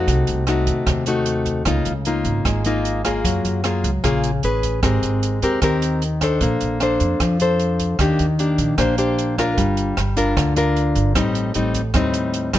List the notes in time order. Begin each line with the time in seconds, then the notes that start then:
Already playing: A3 D#4 F#4
0.08 C2 C3, kick, closed hi-hat
0.27 C2, closed hi-hat
0.47 A3 D#4 F#4, cross-stick, closed hi-hat
0.67 D#2, kick, closed hi-hat
0.87 D#2 C3, kick, cross-stick, closed hi-hat
1.06 A3 D#4 F#4, closed hi-hat
1.26 closed hi-hat
1.46 kick, closed hi-hat
1.65 C#2 C#3 A#3 D#4 F4, kick, cross-stick, closed hi-hat
1.85 C#2, closed hi-hat
2.05 A#3 D#4 F4, closed hi-hat
2.25 G#1, kick, closed hi-hat
2.45 G#1 G#3, kick, cross-stick, closed hi-hat
2.64 A#3 D#4 F4, closed hi-hat
2.85 closed hi-hat
3.05 A#3 F4 G#4, kick, cross-stick, closed hi-hat
3.25 F#2 F#3, kick, closed hi-hat
3.45 F#2, closed hi-hat
3.64 A#3 F4 G#4, cross-stick, closed hi-hat
3.84 C#2, kick, closed hi-hat
4.04 A#1 C#3 A#3 F4 G#4, kick, cross-stick, closed hi-hat
4.24 closed hi-hat
4.43 A1 C#4 G#4 B4, closed hi-hat
4.63 kick, closed hi-hat
4.83 G#1 G#3 C4 G4 A#4, kick, cross-stick, closed hi-hat
5.03 G#1, closed hi-hat
5.23 closed hi-hat
5.42 D#2 C4 G4 A#4, kick, closed hi-hat
5.62 D#2 D#3 C4 G4 A#4, kick, cross-stick, closed hi-hat
5.82 closed hi-hat
6.02 closed hi-hat
6.21 D4 A4 C5, kick, cross-stick, closed hi-hat
6.41 A#1 A#3, kick, closed hi-hat
6.61 A#1, closed hi-hat
6.80 D4 A4 C5, cross-stick, closed hi-hat
7.00 F2, kick, closed hi-hat
7.20 F2 F3, kick, cross-stick, closed hi-hat
7.40 D4 A4 C5, closed hi-hat
7.59 closed hi-hat
7.79 kick, closed hi-hat
7.99 D#2 D#3 A#3 D4 G4, kick, cross-stick, closed hi-hat
8.19 D#2, closed hi-hat
8.39 A#3 D4 G4, closed hi-hat
8.58 A#1, kick, closed hi-hat
8.78 A#1 A#3 D4 G4 C5, kick, cross-stick, closed hi-hat
8.98 D4 G4 C5, closed hi-hat
9.18 closed hi-hat
9.38 D4 F4 A#4, kick, cross-stick, closed hi-hat
9.57 G1 G3, kick, closed hi-hat
9.77 closed hi-hat
9.97 G1, cross-stick, closed hi-hat
10.17 D4 F4 A#4, kick, closed hi-hat
10.37 D2 D3, kick, cross-stick, closed hi-hat
10.56 D4 F4 A#4, closed hi-hat
10.76 closed hi-hat
10.95 G1, kick, closed hi-hat
11.15 A1 A2 G3 C4 D#4, kick, cross-stick, closed hi-hat
11.35 closed hi-hat
11.54 A1 G3 C4 D#4, closed hi-hat
11.74 kick, closed hi-hat
11.94 D#2 A2 G3 C4 D#4, kick, cross-stick, closed hi-hat
12.14 closed hi-hat
12.34 closed hi-hat
12.53 A1 G3 C4 D#4, kick, cross-stick, closed hi-hat